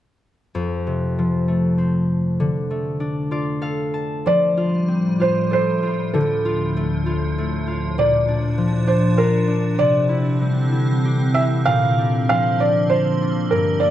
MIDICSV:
0, 0, Header, 1, 4, 480
1, 0, Start_track
1, 0, Key_signature, -1, "major"
1, 0, Tempo, 632911
1, 420, Time_signature, 3, 2, 24, 8
1, 897, Tempo, 610998
1, 2817, Tempo, 633580
1, 4257, Tempo, 607903
1, 7617, Tempo, 628931
1, 9537, Tempo, 610998
1, 10798, End_track
2, 0, Start_track
2, 0, Title_t, "Felt piano"
2, 0, Program_c, 0, 0
2, 3304, Note_on_c, 0, 74, 85
2, 3992, Note_off_c, 0, 74, 0
2, 4020, Note_on_c, 0, 72, 73
2, 4248, Note_off_c, 0, 72, 0
2, 4260, Note_on_c, 0, 72, 80
2, 4737, Note_on_c, 0, 69, 66
2, 4761, Note_off_c, 0, 72, 0
2, 5195, Note_off_c, 0, 69, 0
2, 6200, Note_on_c, 0, 74, 77
2, 6902, Note_on_c, 0, 72, 66
2, 6929, Note_off_c, 0, 74, 0
2, 7140, Note_on_c, 0, 70, 67
2, 7146, Note_off_c, 0, 72, 0
2, 7588, Note_off_c, 0, 70, 0
2, 7620, Note_on_c, 0, 74, 80
2, 8809, Note_on_c, 0, 76, 80
2, 8855, Note_off_c, 0, 74, 0
2, 8864, Note_off_c, 0, 76, 0
2, 9046, Note_on_c, 0, 77, 90
2, 9521, Note_off_c, 0, 77, 0
2, 9533, Note_on_c, 0, 77, 84
2, 9762, Note_off_c, 0, 77, 0
2, 9776, Note_on_c, 0, 74, 75
2, 10006, Note_on_c, 0, 72, 73
2, 10026, Note_off_c, 0, 74, 0
2, 10487, Note_on_c, 0, 70, 73
2, 10506, Note_off_c, 0, 72, 0
2, 10715, Note_off_c, 0, 70, 0
2, 10715, Note_on_c, 0, 74, 78
2, 10798, Note_off_c, 0, 74, 0
2, 10798, End_track
3, 0, Start_track
3, 0, Title_t, "Harp"
3, 0, Program_c, 1, 46
3, 415, Note_on_c, 1, 41, 58
3, 658, Note_on_c, 1, 48, 44
3, 899, Note_on_c, 1, 53, 46
3, 1130, Note_on_c, 1, 57, 47
3, 1366, Note_on_c, 1, 60, 46
3, 1852, Note_on_c, 1, 50, 62
3, 1899, Note_off_c, 1, 41, 0
3, 1899, Note_off_c, 1, 48, 0
3, 1899, Note_off_c, 1, 53, 0
3, 2090, Note_off_c, 1, 57, 0
3, 2093, Note_on_c, 1, 57, 48
3, 2325, Note_on_c, 1, 62, 49
3, 2569, Note_on_c, 1, 65, 49
3, 2574, Note_on_c, 1, 74, 60
3, 2808, Note_on_c, 1, 69, 53
3, 2810, Note_on_c, 1, 77, 63
3, 3053, Note_on_c, 1, 81, 63
3, 3295, Note_on_c, 1, 53, 63
3, 3337, Note_off_c, 1, 50, 0
3, 3531, Note_off_c, 1, 65, 0
3, 3534, Note_on_c, 1, 65, 48
3, 3690, Note_off_c, 1, 60, 0
3, 3768, Note_on_c, 1, 60, 51
3, 3982, Note_off_c, 1, 74, 0
3, 4004, Note_off_c, 1, 65, 0
3, 4007, Note_on_c, 1, 65, 47
3, 4071, Note_off_c, 1, 77, 0
3, 4151, Note_off_c, 1, 81, 0
3, 4238, Note_off_c, 1, 69, 0
3, 4241, Note_on_c, 1, 69, 49
3, 4472, Note_off_c, 1, 62, 0
3, 4490, Note_off_c, 1, 65, 0
3, 4493, Note_on_c, 1, 65, 48
3, 4657, Note_off_c, 1, 57, 0
3, 4743, Note_on_c, 1, 50, 63
3, 4785, Note_off_c, 1, 53, 0
3, 4983, Note_off_c, 1, 65, 0
3, 4986, Note_on_c, 1, 65, 50
3, 5234, Note_on_c, 1, 57, 54
3, 5465, Note_off_c, 1, 65, 0
3, 5468, Note_on_c, 1, 65, 48
3, 5718, Note_off_c, 1, 57, 0
3, 5721, Note_on_c, 1, 57, 52
3, 5947, Note_off_c, 1, 65, 0
3, 5950, Note_on_c, 1, 65, 48
3, 5974, Note_off_c, 1, 69, 0
3, 6116, Note_off_c, 1, 60, 0
3, 6194, Note_on_c, 1, 46, 64
3, 6224, Note_off_c, 1, 50, 0
3, 6241, Note_off_c, 1, 57, 0
3, 6432, Note_on_c, 1, 62, 53
3, 6666, Note_on_c, 1, 53, 54
3, 6893, Note_off_c, 1, 62, 0
3, 6896, Note_on_c, 1, 62, 50
3, 7131, Note_off_c, 1, 65, 0
3, 7135, Note_on_c, 1, 65, 52
3, 7373, Note_off_c, 1, 62, 0
3, 7376, Note_on_c, 1, 62, 47
3, 7622, Note_on_c, 1, 48, 61
3, 7657, Note_off_c, 1, 46, 0
3, 7657, Note_off_c, 1, 53, 0
3, 7850, Note_on_c, 1, 64, 51
3, 7896, Note_off_c, 1, 65, 0
3, 8098, Note_on_c, 1, 55, 51
3, 8329, Note_off_c, 1, 64, 0
3, 8332, Note_on_c, 1, 64, 46
3, 8586, Note_on_c, 1, 67, 49
3, 8816, Note_off_c, 1, 64, 0
3, 8819, Note_on_c, 1, 64, 45
3, 9056, Note_on_c, 1, 46, 64
3, 9098, Note_off_c, 1, 48, 0
3, 9098, Note_off_c, 1, 55, 0
3, 9296, Note_off_c, 1, 62, 0
3, 9299, Note_on_c, 1, 62, 48
3, 9533, Note_on_c, 1, 53, 48
3, 9580, Note_off_c, 1, 64, 0
3, 9775, Note_off_c, 1, 62, 0
3, 9778, Note_on_c, 1, 62, 48
3, 10012, Note_on_c, 1, 65, 51
3, 10258, Note_off_c, 1, 62, 0
3, 10261, Note_on_c, 1, 62, 47
3, 10408, Note_off_c, 1, 67, 0
3, 10498, Note_on_c, 1, 43, 61
3, 10538, Note_off_c, 1, 46, 0
3, 10538, Note_off_c, 1, 53, 0
3, 10741, Note_on_c, 1, 58, 53
3, 10798, Note_off_c, 1, 43, 0
3, 10798, Note_off_c, 1, 58, 0
3, 10798, Note_off_c, 1, 62, 0
3, 10798, Note_off_c, 1, 65, 0
3, 10798, End_track
4, 0, Start_track
4, 0, Title_t, "Ambient pad"
4, 0, Program_c, 2, 92
4, 3296, Note_on_c, 2, 53, 67
4, 3297, Note_on_c, 2, 55, 82
4, 3305, Note_on_c, 2, 45, 76
4, 4730, Note_off_c, 2, 55, 0
4, 4754, Note_on_c, 2, 38, 78
4, 6159, Note_off_c, 2, 45, 0
4, 6174, Note_off_c, 2, 38, 0
4, 6183, Note_on_c, 2, 62, 87
4, 6190, Note_on_c, 2, 46, 71
4, 7585, Note_off_c, 2, 53, 0
4, 7604, Note_off_c, 2, 62, 0
4, 7607, Note_off_c, 2, 46, 0
4, 7633, Note_on_c, 2, 50, 76
4, 7635, Note_on_c, 2, 52, 66
4, 7635, Note_on_c, 2, 60, 86
4, 9050, Note_off_c, 2, 50, 0
4, 9053, Note_off_c, 2, 52, 0
4, 9059, Note_on_c, 2, 50, 75
4, 9062, Note_on_c, 2, 58, 64
4, 10478, Note_off_c, 2, 60, 0
4, 10501, Note_on_c, 2, 43, 71
4, 10798, Note_off_c, 2, 43, 0
4, 10798, Note_off_c, 2, 50, 0
4, 10798, Note_off_c, 2, 58, 0
4, 10798, End_track
0, 0, End_of_file